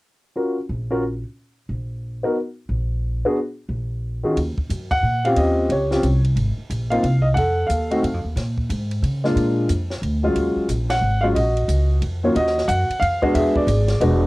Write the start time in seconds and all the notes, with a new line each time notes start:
0.35 C#4 F4 F#4 A#4
0.69 A#1
0.91 C#4 F4 F#4 A#4
1.69 A#1
2.23 B3 D#4 F#4 A#4
2.69 A#1
3.25 B3 D4 F#4 G#4
3.69 A#1
4.23 D#3 C#4 F4 F#4 G#4
4.36 D#2, kick, ride
4.57 muted upright bass stroke, kick
4.70 F#2, kick, hi-hat pedal, ride
4.91 F#5, kick, ride
5.03 A#2
5.25 C4 C#4 F4 G4 F5, ride
5.36 D#2 G4 D#5, kick, ride
5.69 C#2 G4 C#5, kick, ride
5.91 C4 C#4 F4 G4, snare
6.03 C2, kick, hi-hat pedal, ride
6.25 ride
6.36 G#1, kick, ride
6.58 muted upright bass stroke
6.70 A#1, kick, hi-hat pedal, ride
6.90 A#3 C4 D#4 F4 F5, ride
7.03 C2, kick, ride
7.22 D#5
7.34 F2 A4 F#5, kick, ride
7.67 D#2 F5, kick, hi-hat pedal, ride
7.71 A4
7.91 A3 C4 D#4 F#4, ride
8.03 F#2, kick, ride
8.14 F2
8.25 D#2
8.36 A#2, kick, snare, ride
8.58 kick
8.70 G#2, kick, hi-hat pedal, ride
8.91 ride
9.03 C#3, kick, ride
9.24 G#3 A#3 D4 F4, snare
9.36 A#2, kick, ride
9.69 F2, kick, hi-hat pedal, ride
9.90 snare
10.02 D2, kick, ride
10.23 F#3 G#3 C#4 F4
10.35 D#2, kick, ride
10.56 muted upright bass stroke
10.69 A#1, kick, hi-hat pedal, ride
10.90 F#5, snare, ride
11.01 G#1
11.21 F#3 G#3 C#4 F4 F5
11.35 A#1 F#4 D#5, kick, ride
11.57 ride
11.68 C#2, kick, hi-hat pedal, ride
12.02 F2, kick, ride
12.23 D#2 F#3 A#3 C#4 F4 C#5
12.35 D#2 F#4 D#5, kick, ride
12.47 snare
12.58 snare
12.68 F#2 F#5, kick, hi-hat pedal, ride
12.89 muted upright bass stroke, ride
13.00 F2 F5, kick, ride
13.22 G#3 B3 D4 F#4, kick
13.34 E2 G#4 E5, kick, ride
13.55 D5, muted upright bass stroke, kick
13.60 G#4
13.67 G#1, kick, hi-hat pedal, ride
13.88 snare, ride
14.00 E1 G#3 B3 D4 F#4, kick, ride